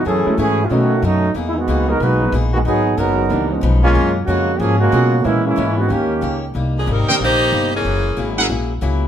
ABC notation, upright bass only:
X:1
M:4/4
L:1/8
Q:"Swing" 1/4=185
K:F#mix
V:1 name="Upright bass" clef=bass
F,, z G,,2 B,,2 F,,2 | E,,2 C,,2 B,,,2 A,,,2 | G,,,2 F,,,2 C,,2 B,,,2 | F,,2 ^E,,2 G,,2 B,,2 |
A,,2 G,,2 D,,2 C,,2 | [K:Cm] C,,2 A,,, z B,,,2 G,,,2 | ^F,,,2 ^G,,,2 ^A,,,2 ^C,,2 |]